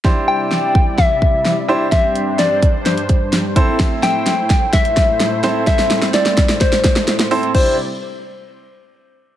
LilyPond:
<<
  \new Staff \with { instrumentName = "Soft synth lead" } { \time 4/4 \key c \major \tempo 4 = 128 r8 g''4. e''2 | e''4 d''4 c''4. r8 | r8 g''4. e''2 | e''4 d''4 c''4. r8 |
c''8 r2. r8 | }
  \new Staff \with { instrumentName = "Grand piano" } { \time 4/4 \key c \major <d' e' g' c''>4. r2 <d' e' g' c''>8 | r2. r8 <c' e' a' c''>8~ | <c' e' a' c''>4 r2 r8 <c' e' a' c''>8 | <c' e' a' c''>4. r2 <c' e' a' c''>8 |
<d' e' g' c''>8 r2. r8 | }
  \new Staff \with { instrumentName = "Supersaw synth" } { \time 4/4 \key c \major <c g e' d''>1 | <g, g d' c''>2.~ <g, g d' c''>8 <a, a e' c''>8~ | <a, a e' c''>1~ | <a, a e' c''>1 |
<c g e' d''>8 r2. r8 | }
  \new DrumStaff \with { instrumentName = "Drums" } \drummode { \time 4/4 <bd sn>4 sn8 bd8 <bd sn>8 bd8 sn4 | <hh bd sn>8 hh8 <hh sn>8 <hh bd>8 <hh sn>16 hh16 <hh bd>8 <hh sn>8 <hh bd>8 | <hh bd sn>8 <hh sn>8 <hh sn>8 <hh bd sn>8 <hh bd sn>16 hh16 <hh bd sn>8 <hh sn>8 <hh sn>8 | <hh bd sn>16 sn16 <hh sn>16 sn16 <hh sn>16 sn16 <hh bd sn>16 sn16 <hh bd sn>16 <hh sn>16 <hh bd sn>16 sn16 <hh sn>16 sn16 hho16 hh16 |
<cymc bd>4 r4 r4 r4 | }
>>